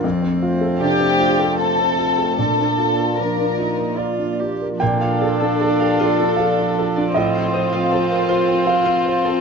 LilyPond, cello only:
\new Staff \with { instrumentName = "Cello" } { \time 3/4 \key bes \major \tempo 4 = 77 c'4 d'4 c'4 | d'4 d'8 ees'8 f'8 g'8 | f2.~ | f2. | }